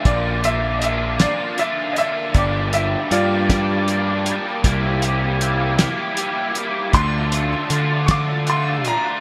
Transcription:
0.03 fingered electric bass A#1, overdriven electric guitar A#2 D3 A#3 D4 F4, upright piano D5, kick, closed hi-hat
0.42 overdriven electric guitar A#3 D4 F4, upright piano E5, closed hi-hat
0.79 overdriven electric guitar D3 A#3 D4 F4, upright piano D#5, closed hi-hat
0.84 upright piano E5
1.19 overdriven electric guitar A#3 D4 F4, upright piano D5, snare, closed hi-hat
1.57 overdriven electric guitar D3 A#3 D4 F4, upright piano E5, closed hi-hat
1.93 overdriven electric guitar D4 F4, upright piano D#5, closed hi-hat
1.98 overdriven electric guitar A#3, upright piano E5
2.34 fingered electric bass G1, overdriven electric guitar G2 D3 G3 A#3 D4 G4, upright piano D5, kick, closed hi-hat
2.73 overdriven electric guitar G3 A#3 D4 G4, upright piano E5, closed hi-hat
3.11 fingered electric bass G2, overdriven electric guitar G3 A#3 D4 G4, upright piano F4 D5, closed hi-hat
3.49 overdriven electric guitar G3 A#3 D4 G4, kick, snare, closed hi-hat
3.88 overdriven electric guitar G3 A#3 D4 G4, closed hi-hat
4.26 overdriven electric guitar G3 A#3 D4 G4, closed hi-hat
4.64 fingered electric bass C2, overdriven electric guitar C3 G3 A#3 E4 G4, kick, closed hi-hat
5.02 overdriven electric guitar A#3 E4 G4, closed hi-hat
5.40 overdriven electric guitar G3 A#3 E4 G4, closed hi-hat
5.78 overdriven electric guitar A#3 E4 G4, snare, closed hi-hat
6.17 overdriven electric guitar G3 A#3 E4 G4, closed hi-hat
6.55 overdriven electric guitar A#3 E4 G4, closed hi-hat
6.93 fingered electric bass D2, overdriven electric guitar D3 A3 D4 F4, upright piano C6, kick, closed hi-hat
7.32 overdriven electric guitar A3 D4 F4, closed hi-hat
7.70 fingered electric bass D3, overdriven electric guitar D3 A3 D4 F4, closed hi-hat
8.06 overdriven electric guitar A3 D4 F4, upright piano C#6, kick, snare, closed hi-hat
8.11 upright piano D6
8.47 overdriven electric guitar D3 A3 D4 F4, upright piano C6, closed hi-hat
8.84 overdriven electric guitar A3 D4 F4, upright piano A#5, closed hi-hat

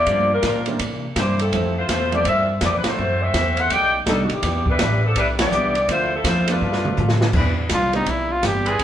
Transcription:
Already playing: saxophone section A#3 F4 G4 D5
0.06 upright bass G2, hollow-body jazz guitar G2 F3 A#3 D4, grand piano F3 G3 A3 A#3 D4, kick, ride
0.33 saxophone section G3 D4 F4 A#4
0.43 hollow-body jazz guitar G2 F3 A#3 D4, upright bass A#2, kick, snare, hi-hat pedal, ride
0.66 grand piano E3 G3 A#3 C4 D4, ride
0.79 upright bass C3, hollow-body jazz guitar C3 E3 A#3 D4, kick, ride
1.16 upright bass G2, hollow-body jazz guitar C3 E3 A#3 D4, saxophone section A#3 E4 G4 C5, kick, snare, hi-hat pedal, ride
1.39 saxophone section F3 C4 E4 A4, ride
1.52 upright bass F2, hollow-body jazz guitar F2 E3 A3 C4, grand piano F3 G3 A3 C4 E4, kick, ride
1.78 saxophone section A3 E4 F4 C5
1.89 upright bass E2, hollow-body jazz guitar F2 E3 A3 C4, kick, snare, hi-hat pedal, ride
2.12 grand piano F3 G3 A3 C4 E4, saxophone section B3 E4 G4 D5, ride
2.25 hollow-body jazz guitar F2 E3 A3 C4, upright bass G2, saxophone section C4 F4 A4 E5, kick, ride
2.61 hollow-body jazz guitar F2 E3 A3 C4, upright bass F2, saxophone section B3 E4 D5, kick, snare, hi-hat pedal, ride
2.65 saxophone section G4
2.78 saxophone section B4
2.84 saxophone section A3 E4 F#4 C5, muted upright bass stroke, snare, ride
2.97 hollow-body jazz guitar F#2 E3 A3 C4, upright bass F#2
3.22 saxophone section C4 F#4 A4 E5
3.34 upright bass E2, hollow-body jazz guitar F#2 E3 A3 C4, kick, snare, hi-hat pedal, ride
3.57 saxophone section E4 A4 C5 F#5, ride
3.70 upright bass B1, hollow-body jazz guitar B2 G3 A3 D#4, saxophone section D#4 A4 D5 G5, kick, ride
4.06 upright bass C2, hollow-body jazz guitar B2 G3 A3 D#4, grand piano D#3 G3 A3 B3 D4, saxophone section G3 D4 D#4 A4, kick, snare, hi-hat pedal, ride
4.24 saxophone section F#4
4.30 saxophone section E3 B3 D4 G4, muted upright bass stroke, ride
4.42 upright bass E2, hollow-body jazz guitar E3 B3 D4 G4, kick, snare, ride
4.66 saxophone section D4 E4, kick
4.70 saxophone section G3 B4
4.79 upright bass A1, hollow-body jazz guitar E3 B3 D4 G4, kick, snare, hi-hat pedal, ride
5.06 saxophone section F3 B3 D4 A4
5.15 upright bass B1, hollow-body jazz guitar E3 B3 D4 G4, saxophone section G3 D4 E4 B4, kick, ride
5.39 saxophone section B3 E4 G4 D5, snare, ride
5.51 upright bass C2, grand piano E3 G3 B3 D4 E4, hollow-body jazz guitar E3 B3 D4 G4, hi-hat pedal
5.75 ride
5.88 upright bass D2, hollow-body jazz guitar D3 F3 C4 E4, grand piano F3 A3 C4 D4 E4, saxophone section A3 E4 F4 C5, kick, ride
6.15 saxophone section F3 C4 E4 A4
6.24 upright bass F2, hollow-body jazz guitar D3 F3 C4 E4, saxophone section E4, kick, snare, hi-hat pedal, ride
6.28 saxophone section A3 F4 C5
6.48 grand piano G3 A3 B3 D4 F4, saxophone section D4 F4 B4, ride
6.52 saxophone section A3
6.61 upright bass G2, hollow-body jazz guitar G3 B3 F4 A4
6.73 snare
6.85 mid tom
6.97 upright bass A2, hollow-body jazz guitar G3 B3 F4 A4, floor tom, hi-hat pedal
7.09 snare
7.21 snare
7.33 upright bass E2, hollow-body jazz guitar C3 E3 B3 D4, saxophone section E3 C4 D4 B4, grand piano G3 B3 C4 D4 E4, kick, crash
7.69 upright bass C2, hollow-body jazz guitar C3 E3 B3 D4, kick, snare, hi-hat pedal, ride
7.74 trumpet F4
7.93 grand piano G3 B3 C4 D4 G4, trumpet D#4, ride
8.06 upright bass B1, hollow-body jazz guitar C3 E3 B3 D4, trumpet E4, kick, ride
8.32 trumpet F4
8.43 upright bass G1, hollow-body jazz guitar C3 E3 B3 D4, trumpet G4, kick, snare, hi-hat pedal, ride
8.64 saxophone section E3 C4 D4 B4, ride
8.68 trumpet G#4
8.79 upright bass E1, hollow-body jazz guitar E3 C4 D4, kick, ride

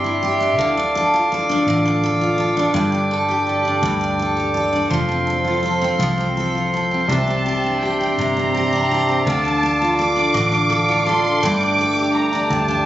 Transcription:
Already playing: fingered electric bass G1, steel-string acoustic guitar C3 D4 G4, tonewheel organ G4 D5 E5 C6
0.04 steel-string acoustic guitar E4
0.23 steel-string acoustic guitar G4
0.40 steel-string acoustic guitar D4
0.58 fingered electric bass D2, steel-string acoustic guitar D3, tonewheel organ A4 F5 D6
0.77 steel-string acoustic guitar D4
0.95 steel-string acoustic guitar A4
1.14 steel-string acoustic guitar F4
1.32 steel-string acoustic guitar A4
1.49 steel-string acoustic guitar D4
1.67 fingered electric bass A1, steel-string acoustic guitar D3
1.85 steel-string acoustic guitar D4
2.04 steel-string acoustic guitar A4
2.21 steel-string acoustic guitar F4
2.38 steel-string acoustic guitar A4
2.57 steel-string acoustic guitar D4
2.74 fingered electric bass G1, steel-string acoustic guitar G2, tonewheel organ A4 D5 G5
2.92 steel-string acoustic guitar D4
3.11 steel-string acoustic guitar A4
3.29 steel-string acoustic guitar G4
3.47 steel-string acoustic guitar A4
3.65 steel-string acoustic guitar D4
3.82 fingered electric bass D2, steel-string acoustic guitar G2
4.01 steel-string acoustic guitar D4
4.19 steel-string acoustic guitar A4
4.37 steel-string acoustic guitar G4
4.54 steel-string acoustic guitar A4
4.73 steel-string acoustic guitar D4
4.90 fingered electric bass F1, steel-string acoustic guitar F3, tonewheel organ C5 F5 C6
5.09 steel-string acoustic guitar C4
5.27 steel-string acoustic guitar A4
5.45 steel-string acoustic guitar F4
5.63 steel-string acoustic guitar A4
5.82 steel-string acoustic guitar C4
5.99 fingered electric bass C2, steel-string acoustic guitar F3
6.18 steel-string acoustic guitar C4
6.37 steel-string acoustic guitar A4
6.55 steel-string acoustic guitar F4
6.74 steel-string acoustic guitar A4
6.91 steel-string acoustic guitar C4
7.07 fingered electric bass C2, steel-string acoustic guitar C3, tonewheel organ G4 D5 E5, violin section A5
7.28 steel-string acoustic guitar C4
7.46 steel-string acoustic guitar G4
7.64 steel-string acoustic guitar D4
7.81 steel-string acoustic guitar G4, violin section G5
8.01 steel-string acoustic guitar C4
8.18 fingered electric bass G1, steel-string acoustic guitar C3, violin section A#5
8.37 steel-string acoustic guitar C4
8.55 steel-string acoustic guitar G4
8.73 steel-string acoustic guitar D4
8.91 steel-string acoustic guitar G4
9.08 steel-string acoustic guitar C4
9.26 fingered electric bass D2, steel-string acoustic guitar D3, tonewheel organ A4 F5 D6, violin section A5
9.45 steel-string acoustic guitar D4
9.63 steel-string acoustic guitar A4
9.82 steel-string acoustic guitar F4
9.99 steel-string acoustic guitar A4, violin section D6
10.16 steel-string acoustic guitar D4
10.34 fingered electric bass A1, steel-string acoustic guitar D3
10.52 steel-string acoustic guitar D4
10.70 steel-string acoustic guitar A4
10.89 steel-string acoustic guitar F4
11.06 steel-string acoustic guitar A4, violin section C6
11.24 steel-string acoustic guitar D4
11.43 fingered electric bass G1, steel-string acoustic guitar G2, tonewheel organ A3 D5 G5, violin section D6
11.61 steel-string acoustic guitar D4
11.78 steel-string acoustic guitar A4
11.97 steel-string acoustic guitar G4
12.14 violin section A#5
12.33 steel-string acoustic guitar D4
12.50 fingered electric bass D2, steel-string acoustic guitar G2, violin section A5
12.68 steel-string acoustic guitar D4

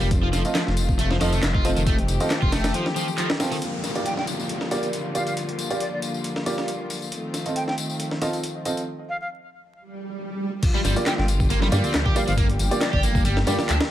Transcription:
Already playing: string section F3
0.01 detuned saw bass F1, overdriven electric guitar G3, tambourine
0.11 string section D#3 A3 C4 F4, kick, closed hi-hat, tambourine
0.23 overdriven electric guitar F3
0.33 detuned saw bass F1, overdriven electric guitar F3, snare, closed hi-hat, tambourine
0.45 grand piano C4 F4 A4 D#5, closed hi-hat, tambourine
0.55 overdriven electric guitar F3, snare, clap, closed hi-hat
0.67 detuned saw bass F1, snare
0.77 closed hi-hat, tambourine
0.89 kick, tambourine
0.99 detuned saw bass F1, overdriven electric guitar A3, closed hi-hat, tambourine
1.10 overdriven electric guitar F3, snare
1.21 detuned saw bass F1, overdriven electric guitar F3, grand piano C4 F4 A4 D#5, snare, closed hi-hat, tambourine
1.32 overdriven electric guitar A3, closed hi-hat, tambourine
1.43 detuned saw bass F1, snare, clap, closed hi-hat, tambourine
1.54 overdriven electric guitar F4, kick
1.65 overdriven electric guitar F3, grand piano C4 F4 A4 D#5, closed hi-hat, tambourine
1.76 detuned saw bass F1, overdriven electric guitar D#3, closed hi-hat, tambourine
1.87 overdriven electric guitar A3, string section G4, kick, closed hi-hat, tambourine
1.98 closed hi-hat
2.08 detuned saw bass F1, closed hi-hat, tambourine
2.20 grand piano C4 F4 A4 D#5, closed hi-hat, tambourine
2.30 snare, clap, closed hi-hat, tambourine
2.42 detuned saw bass F1, overdriven electric guitar F4, kick
2.52 overdriven electric guitar A3, snare, closed hi-hat, tambourine
2.64 snare, closed hi-hat, tambourine
2.74 overdriven electric guitar F3, closed hi-hat, tambourine
2.86 snare
2.96 overdriven electric guitar F3, tambourine
3.08 tambourine
3.18 overdriven electric guitar F3, clap, closed hi-hat, tambourine
3.30 snare
3.40 grand piano C4 F4 A4 G5, snare, tambourine
3.52 overdriven electric guitar D#3, open hi-hat, tambourine
3.62 string section D3 F3 G3 A#3 F4, closed hi-hat, tambourine, downlifter
3.84 snare, closed hi-hat, tambourine
3.95 grand piano A#3 F4 G4 D5, closed hi-hat, tambourine
4.06 flute G5, closed hi-hat, tambourine
4.17 flute G5, snare
4.27 closed hi-hat, tambourine
4.40 tambourine
4.49 closed hi-hat, tambourine
4.61 snare
4.71 grand piano A#3 F4 G4 D5, snare, closed hi-hat, tambourine
4.83 closed hi-hat, tambourine
4.93 closed hi-hat, tambourine
5.15 grand piano A#3 F4 G4 D5, flute F5, closed hi-hat, tambourine
5.27 flute F5, closed hi-hat, tambourine
5.37 closed hi-hat, tambourine
5.49 closed hi-hat
5.59 closed hi-hat, tambourine
5.70 grand piano A#3 F4 G4 D5, closed hi-hat, tambourine
5.80 flute D5, closed hi-hat, tambourine
5.93 flute D5
6.02 closed hi-hat, tambourine
6.14 tambourine
6.24 closed hi-hat, tambourine
6.36 snare
6.46 grand piano A#3 F4 G4 D5, snare, closed hi-hat, tambourine
6.58 snare, tambourine
6.68 closed hi-hat, tambourine
6.90 open hi-hat, tambourine
7.02 tambourine
7.12 string section D#3 A3 C4, closed hi-hat, tambourine
7.34 snare, closed hi-hat, tambourine
7.46 grand piano C4 F4 A4 D#5, closed hi-hat, tambourine
7.56 flute G5, closed hi-hat, tambourine
7.68 flute G5, snare
7.78 closed hi-hat, tambourine
7.90 tambourine
8.00 closed hi-hat, tambourine
8.11 snare
8.22 grand piano C4 F4 A4 D#5, snare, closed hi-hat, tambourine
8.33 closed hi-hat, tambourine
8.44 closed hi-hat, tambourine
8.65 grand piano C4 F4 A4 D#5, closed hi-hat, tambourine
8.77 closed hi-hat, tambourine
9.09 flute F5
9.21 flute F5
9.75 swell
10.62 string section D3 F3 G3 A#3 F4, kick, closed hi-hat, crash, tambourine
10.74 overdriven electric guitar G3
10.85 detuned saw bass G1, overdriven electric guitar G3, snare, closed hi-hat, tambourine
10.96 grand piano A#3 F4 G4 D5, closed hi-hat, tambourine
11.06 overdriven electric guitar G3, flute G5, snare, clap, closed hi-hat, tambourine
11.18 detuned saw bass G1, flute G5, snare
11.28 closed hi-hat, tambourine
11.40 kick, tambourine
11.50 detuned saw bass G1, overdriven electric guitar A#3, closed hi-hat, tambourine
11.62 overdriven electric guitar G3, snare
11.72 detuned saw bass G2, overdriven electric guitar G3, grand piano A#3 F4 G4 D5, snare, closed hi-hat, tambourine
11.84 detuned saw bass D2, overdriven electric guitar C4, closed hi-hat, tambourine
11.94 detuned saw bass D2, snare, clap, closed hi-hat, tambourine
12.06 overdriven electric guitar G4, kick
12.16 overdriven electric guitar G3, grand piano A#3 F4 G4 D5, flute F5, closed hi-hat, tambourine
12.27 detuned saw bass G1, overdriven electric guitar F3, flute F5, closed hi-hat, tambourine
12.37 overdriven electric guitar A#3, string section G4, kick, closed hi-hat
12.49 closed hi-hat
12.59 detuned saw bass G1, closed hi-hat, tambourine
12.71 grand piano A#3 F4 G4 D5, closed hi-hat, tambourine
12.81 flute D5, snare, clap, closed hi-hat
12.93 detuned saw bass G1, overdriven electric guitar G4, flute D5, kick
13.03 overdriven electric guitar A#3, closed hi-hat, tambourine
13.15 kick, tambourine
13.25 detuned saw bass G1, overdriven electric guitar G3, closed hi-hat, tambourine
13.37 snare
13.47 detuned saw bass G2, overdriven electric guitar G3, grand piano A#3 F4 G4 D5, snare, closed hi-hat, tambourine
13.59 detuned saw bass D2, snare, tambourine
13.69 detuned saw bass D2, overdriven electric guitar D4, clap, closed hi-hat, tambourine
13.80 snare

